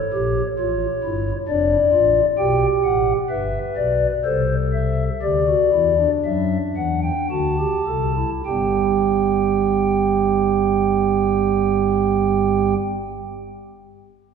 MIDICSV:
0, 0, Header, 1, 2, 480
1, 0, Start_track
1, 0, Key_signature, 1, "major"
1, 0, Tempo, 902256
1, 1271, Time_signature, 3, 2, 24, 8
1, 1759, Tempo, 964630
1, 2719, Tempo, 1016949
1, 3199, Tempo, 1069519
1, 3679, Tempo, 1145038
1, 4159, Tempo, 1174168
1, 6560, End_track
2, 0, Start_track
2, 0, Title_t, "Pipe organ"
2, 0, Program_c, 0, 19
2, 0, Note_on_c, 0, 73, 63
2, 71, Note_on_c, 0, 34, 67
2, 71, Note_on_c, 0, 46, 67
2, 71, Note_on_c, 0, 67, 78
2, 222, Note_off_c, 0, 34, 0
2, 222, Note_off_c, 0, 46, 0
2, 222, Note_off_c, 0, 67, 0
2, 248, Note_off_c, 0, 73, 0
2, 312, Note_on_c, 0, 73, 75
2, 313, Note_on_c, 0, 33, 64
2, 313, Note_on_c, 0, 45, 73
2, 313, Note_on_c, 0, 65, 82
2, 462, Note_off_c, 0, 33, 0
2, 462, Note_off_c, 0, 45, 0
2, 462, Note_off_c, 0, 65, 0
2, 551, Note_on_c, 0, 64, 76
2, 552, Note_on_c, 0, 43, 63
2, 553, Note_on_c, 0, 31, 70
2, 700, Note_off_c, 0, 64, 0
2, 701, Note_off_c, 0, 31, 0
2, 701, Note_off_c, 0, 43, 0
2, 724, Note_off_c, 0, 73, 0
2, 788, Note_on_c, 0, 41, 69
2, 789, Note_on_c, 0, 29, 76
2, 790, Note_on_c, 0, 62, 90
2, 790, Note_on_c, 0, 74, 71
2, 938, Note_off_c, 0, 41, 0
2, 939, Note_off_c, 0, 29, 0
2, 939, Note_off_c, 0, 62, 0
2, 1025, Note_on_c, 0, 45, 76
2, 1026, Note_on_c, 0, 33, 76
2, 1026, Note_on_c, 0, 65, 82
2, 1176, Note_off_c, 0, 33, 0
2, 1176, Note_off_c, 0, 45, 0
2, 1176, Note_off_c, 0, 65, 0
2, 1202, Note_off_c, 0, 74, 0
2, 1267, Note_on_c, 0, 35, 78
2, 1267, Note_on_c, 0, 47, 74
2, 1267, Note_on_c, 0, 79, 92
2, 1269, Note_on_c, 0, 67, 75
2, 1418, Note_off_c, 0, 35, 0
2, 1418, Note_off_c, 0, 47, 0
2, 1418, Note_off_c, 0, 79, 0
2, 1511, Note_on_c, 0, 33, 74
2, 1512, Note_on_c, 0, 45, 75
2, 1512, Note_on_c, 0, 78, 78
2, 1664, Note_off_c, 0, 33, 0
2, 1664, Note_off_c, 0, 78, 0
2, 1665, Note_off_c, 0, 45, 0
2, 1689, Note_off_c, 0, 67, 0
2, 1753, Note_on_c, 0, 71, 78
2, 1753, Note_on_c, 0, 76, 86
2, 1754, Note_on_c, 0, 31, 79
2, 1754, Note_on_c, 0, 43, 71
2, 1900, Note_off_c, 0, 76, 0
2, 1901, Note_off_c, 0, 31, 0
2, 1901, Note_off_c, 0, 43, 0
2, 1988, Note_on_c, 0, 35, 66
2, 1988, Note_on_c, 0, 47, 71
2, 1988, Note_on_c, 0, 74, 81
2, 2137, Note_off_c, 0, 35, 0
2, 2137, Note_off_c, 0, 47, 0
2, 2137, Note_off_c, 0, 74, 0
2, 2162, Note_off_c, 0, 71, 0
2, 2228, Note_on_c, 0, 69, 73
2, 2228, Note_on_c, 0, 72, 83
2, 2229, Note_on_c, 0, 36, 73
2, 2230, Note_on_c, 0, 48, 70
2, 2378, Note_off_c, 0, 72, 0
2, 2469, Note_on_c, 0, 76, 78
2, 2622, Note_off_c, 0, 76, 0
2, 2648, Note_off_c, 0, 69, 0
2, 2649, Note_off_c, 0, 36, 0
2, 2650, Note_off_c, 0, 48, 0
2, 2712, Note_on_c, 0, 67, 68
2, 2712, Note_on_c, 0, 74, 75
2, 2713, Note_on_c, 0, 38, 74
2, 2713, Note_on_c, 0, 50, 70
2, 2816, Note_off_c, 0, 67, 0
2, 2831, Note_on_c, 0, 66, 66
2, 2862, Note_off_c, 0, 38, 0
2, 2862, Note_off_c, 0, 50, 0
2, 2936, Note_off_c, 0, 66, 0
2, 2952, Note_on_c, 0, 52, 60
2, 2952, Note_on_c, 0, 64, 63
2, 2953, Note_on_c, 0, 40, 63
2, 3057, Note_off_c, 0, 64, 0
2, 3074, Note_on_c, 0, 62, 59
2, 3103, Note_off_c, 0, 52, 0
2, 3104, Note_off_c, 0, 40, 0
2, 3127, Note_off_c, 0, 74, 0
2, 3197, Note_on_c, 0, 76, 71
2, 3198, Note_on_c, 0, 42, 67
2, 3198, Note_on_c, 0, 54, 72
2, 3344, Note_off_c, 0, 42, 0
2, 3344, Note_off_c, 0, 54, 0
2, 3344, Note_off_c, 0, 76, 0
2, 3429, Note_on_c, 0, 40, 64
2, 3429, Note_on_c, 0, 52, 61
2, 3429, Note_on_c, 0, 78, 69
2, 3535, Note_off_c, 0, 78, 0
2, 3550, Note_on_c, 0, 79, 61
2, 3581, Note_off_c, 0, 40, 0
2, 3582, Note_off_c, 0, 52, 0
2, 3593, Note_off_c, 0, 62, 0
2, 3658, Note_off_c, 0, 79, 0
2, 3670, Note_on_c, 0, 38, 67
2, 3671, Note_on_c, 0, 50, 68
2, 3672, Note_on_c, 0, 66, 66
2, 3672, Note_on_c, 0, 81, 70
2, 3775, Note_off_c, 0, 66, 0
2, 3791, Note_on_c, 0, 67, 66
2, 3819, Note_off_c, 0, 38, 0
2, 3820, Note_off_c, 0, 50, 0
2, 3895, Note_off_c, 0, 67, 0
2, 3909, Note_on_c, 0, 36, 63
2, 3909, Note_on_c, 0, 69, 59
2, 3910, Note_on_c, 0, 48, 63
2, 4015, Note_off_c, 0, 69, 0
2, 4032, Note_on_c, 0, 64, 62
2, 4062, Note_off_c, 0, 36, 0
2, 4062, Note_off_c, 0, 48, 0
2, 4087, Note_off_c, 0, 81, 0
2, 4139, Note_off_c, 0, 64, 0
2, 4154, Note_on_c, 0, 31, 57
2, 4155, Note_on_c, 0, 43, 57
2, 4155, Note_on_c, 0, 79, 59
2, 4156, Note_on_c, 0, 67, 59
2, 4168, Note_on_c, 0, 55, 55
2, 4168, Note_on_c, 0, 59, 54
2, 5907, Note_off_c, 0, 31, 0
2, 5907, Note_off_c, 0, 43, 0
2, 5907, Note_off_c, 0, 67, 0
2, 5907, Note_off_c, 0, 79, 0
2, 5913, Note_off_c, 0, 55, 0
2, 5913, Note_off_c, 0, 59, 0
2, 6560, End_track
0, 0, End_of_file